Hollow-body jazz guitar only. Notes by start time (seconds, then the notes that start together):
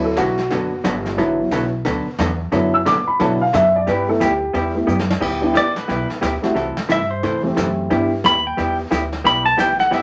0.17 D3 F#3 B3 F#4 A4
0.51 D3 F#3 B3 F#4 A4
0.84 D3 F#3 B3 F#4 A4
1.18 D3 F#3 B3 F#4 A4
1.52 D3 F#3 B3 F#4 A4
1.85 D3 F#3 B3 F#4 A4
2.19 D3 F#3 B3 F#4 A4
2.52 D3 F#3 B3 F#4 A4
2.85 D3 F#3 B3 F#4 A4
3.20 D3 F#3 B3 F#4 A4
3.53 D3 F#3 B3 F#4 A4
3.87 G3 B3 E4 G4
4.20 G3 B3 E4 G4
4.53 G3 B3 E4 G4
4.87 G3 B3 E4 G4
5.20 G3 B3 E4 G4
5.54 G3 B3 E4 G4
5.88 G3 B3 E4 G4
6.21 G3 B3 E4 G4
6.55 C3 E3 A3 E4 A4
6.89 C3 E3 A3 E4 A4
7.23 C3 E3 A3 E4 A4
7.56 C3 E3 A3 E4 A4
7.90 G3 B3 E4 G4
8.24 G3 B3 E4 G4
8.57 G3 B3 E4 G4
8.91 G3 B3 E4 G4
9.24 G3 B3 E4 G4
9.57 G3 B3 E4 G4
9.91 G3 B3 E4 G4